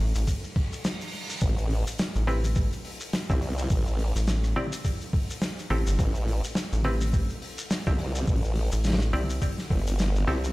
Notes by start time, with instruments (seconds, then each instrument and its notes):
0.00 analog synth bass A1
0.15 analog synth bass A1, open hi-hat, shekere
0.27 kick, open hi-hat, reverse cymbal, shekere
0.44 shekere
0.56 kick, cross-stick, open hi-hat
0.73 open hi-hat, shekere
0.84 snare, open hi-hat, shekere
1.01 open hi-hat, shekere
1.08 open hi-hat
1.30 open hi-hat, shekere
1.41 wobble bass A1, kick, open hi-hat, shekere
1.58 open hi-hat, shekere
1.70 open hi-hat
1.87 open hi-hat, shekere
1.98 snare, open hi-hat, shekere
2.15 analog synth bass A1, open hi-hat, shekere
2.27 clav C4 E4 G4 B4, open hi-hat
2.44 open hi-hat, shekere
2.56 kick, open hi-hat, shekere
2.73 open hi-hat, shekere
2.85 open hi-hat
3.00 open hi-hat, shekere
3.13 snare, open hi-hat, shekere
3.30 wobble bass C2, clav C4 E4 G4 C5, kick, open hi-hat, shekere
3.42 cross-stick, open hi-hat
3.58 open hi-hat, shekere
3.70 wobble bass A1, kick, open hi-hat, shekere
3.87 shekere
3.99 open hi-hat
4.15 analog synth bass A1, open hi-hat, shekere
4.27 snare, open hi-hat, shekere
4.44 cross-stick, open hi-hat, shekere
4.56 clav C4 E4 G4 D5
4.72 open hi-hat, shekere
4.85 kick, open hi-hat, shekere
5.01 open hi-hat, shekere
5.13 kick, open hi-hat
5.30 open hi-hat, shekere
5.42 snare, open hi-hat, shekere
5.59 open hi-hat, shekere
5.61 open hi-hat
5.65 open hi-hat
5.67 open hi-hat
5.69 analog synth bass A1, clav C4 E4 G4 A4, open hi-hat
5.86 analog synth bass G1, open hi-hat, shekere
5.99 wobble bass A1, kick, open hi-hat, shekere
6.15 open hi-hat, shekere
6.28 open hi-hat
6.44 open hi-hat, shekere
6.55 snare, open hi-hat, shekere
6.72 analog synth bass A1, open hi-hat, shekere
6.84 clav C4 E4 G4 B4, open hi-hat
7.01 shekere
7.07 open hi-hat
7.13 kick, open hi-hat, shekere
7.30 open hi-hat, shekere
7.42 open hi-hat
7.58 shekere
7.71 snare, open hi-hat, shekere
7.87 wobble bass C2, clav C4 E4 G4 C5, kick, open hi-hat, shekere
7.98 cross-stick, open hi-hat
8.15 open hi-hat, shekere
8.27 wobble bass A1, kick, shekere
8.36 open hi-hat
8.44 shekere
8.56 open hi-hat
8.72 analog synth bass A1, open hi-hat, shekere
8.84 snare, open hi-hat, shekere
8.88 snare
8.90 snare
8.93 snare
8.99 cross-stick, snare, open hi-hat, shekere
9.13 analog synth bass C2, clav C4 E4 G4 D5, open hi-hat
9.30 open hi-hat, shekere
9.42 kick, open hi-hat, shekere
9.52 open hi-hat
9.58 snare, open hi-hat, shekere
9.61 open hi-hat
9.70 wobble bass G1, kick, cross-stick, open hi-hat
9.87 open hi-hat, shekere
9.99 snare, open hi-hat, shekere
10.16 open hi-hat, shekere
10.27 wobble bass C2, clav C4 E4 G4 A4, open hi-hat
10.44 open hi-hat, shekere